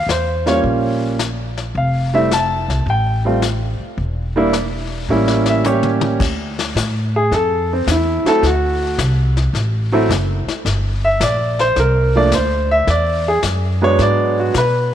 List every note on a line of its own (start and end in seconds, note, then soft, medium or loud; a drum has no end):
0.07 0.59 E2 medium
0.07 snare medium
0.07 hi-hat pedal medium
0.11 0.47 C5 medium
0.46 1.16 G3 medium
0.46 1.16 A#3 soft
0.46 1.16 C#4 medium
0.46 1.16 F4 medium
0.46 0.58 C#5 medium
0.46 snare soft
0.64 1.71 A#1 medium
0.64 brush sweep soft
0.64 kick soft
1.19 snare medium
1.19 hi-hat pedal medium
1.57 snare soft
1.75 2.65 F1 medium
1.75 2.14 F5 medium
1.75 brush sweep soft
1.75 kick soft
2.14 2.29 G3 medium
2.14 2.29 A3 medium
2.14 2.30 C4 medium
2.14 2.30 E4 medium
2.14 2.31 E5 medium
2.31 2.84 A5 medium
2.31 snare medium
2.31 hi-hat pedal medium
2.68 2.85 C2 medium
2.68 snare soft
2.86 3.76 A1 medium
2.86 3.40 G5 medium
2.86 brush sweep soft
2.86 kick soft
3.25 3.40 G3 medium
3.25 3.41 A3 medium
3.25 3.41 C4 soft
3.25 3.41 F4 medium
3.42 snare medium
3.42 hi-hat pedal medium
3.80 muted upright bass stroke soft
3.97 5.05 E1 medium
3.97 brush sweep soft
3.97 kick soft
4.36 4.51 G3 medium
4.36 4.52 A#3 medium
4.36 4.52 D4 medium
4.36 4.52 E4 medium
4.53 snare medium
4.53 hi-hat pedal medium
5.08 6.16 A1 medium
5.08 5.63 G3 medium
5.08 5.63 A#3 medium
5.08 5.63 C#4 medium
5.08 5.64 E4 medium
5.28 snare soft
5.46 5.65 E5 medium
5.46 snare medium
5.64 6.20 G3 medium
5.64 6.20 A#3 soft
5.64 6.20 C#4 medium
5.64 6.21 G4 medium
5.64 5.88 C#5 medium
5.64 hi-hat pedal medium
5.64 mid tom medium
5.83 mid tom medium
6.01 mid tom medium
6.20 6.74 D2 medium
6.20 brush sweep medium
6.20 kick medium
6.20 snare soft
6.20 crash medium
6.59 snare soft
6.75 7.29 A2 medium
6.75 kick soft
6.75 snare medium
6.75 hi-hat pedal medium
7.16 7.32 G#4 medium
7.31 7.85 F2 medium
7.31 7.70 A4 medium
7.31 brush sweep soft
7.31 kick soft
7.31 snare soft
7.73 7.88 C4 medium
7.87 8.22 E2 medium
7.87 kick soft
7.87 snare medium
7.87 hi-hat pedal medium
7.91 8.25 E4 medium
8.25 8.41 F#3 medium
8.25 8.41 A3 medium
8.25 8.41 C4 medium
8.25 8.42 E4 medium
8.25 8.43 A4 loud
8.25 muted upright bass stroke soft
8.25 snare soft
8.42 8.96 D2 medium
8.42 brush sweep soft
8.42 kick soft
8.42 snare soft
8.46 8.96 F#4 medium
8.98 9.52 C2 medium
8.98 kick soft
8.98 snare medium
8.98 hi-hat pedal medium
9.37 snare soft
9.53 10.08 A1 medium
9.53 brush sweep soft
9.53 kick soft
9.53 snare soft
9.92 10.08 F#3 medium
9.92 10.08 A3 medium
9.92 10.08 C4 medium
9.92 10.09 E4 medium
10.09 10.45 F#1 medium
10.09 kick soft
10.09 snare medium
10.09 hi-hat pedal medium
10.46 muted upright bass stroke soft
10.46 snare soft
10.65 11.19 G1 medium
10.65 brush sweep medium
10.65 kick soft
10.65 snare soft
11.05 11.21 E5 medium
11.20 11.75 A#1 medium
11.20 11.59 D5 medium
11.20 kick soft
11.20 snare medium
11.20 hi-hat pedal medium
11.59 11.77 C5 medium
11.59 snare soft
11.76 12.30 C2 medium
11.76 12.15 A#4 medium
11.76 brush sweep soft
11.76 kick soft
11.76 snare soft
12.16 12.31 F3 medium
12.16 12.31 A3 medium
12.16 12.31 A#3 medium
12.16 12.32 D4 medium
12.16 12.33 D5 medium
12.32 12.86 D2 medium
12.32 12.71 C5 medium
12.32 kick soft
12.32 snare medium
12.32 hi-hat pedal medium
12.71 12.88 E5 loud
12.87 13.41 E2 medium
12.87 13.26 D5 medium
12.87 brush sweep medium
12.87 kick soft
12.87 snare soft
13.28 13.38 G#4 medium
13.43 13.97 F#2 medium
13.43 kick soft
13.43 snare medium
13.43 hi-hat pedal medium
13.82 14.51 F#3 medium
13.82 14.52 G#3 medium
13.82 14.52 B3 medium
13.82 14.52 D4 medium
13.82 14.00 C#5 loud
13.99 14.53 G#2 medium
13.99 14.38 D5 medium
13.99 brush sweep soft
13.99 kick soft
13.99 snare soft
14.40 14.55 F#4 medium
14.54 14.94 B2 medium
14.54 14.94 B4 medium
14.54 kick soft
14.54 snare medium
14.54 hi-hat pedal medium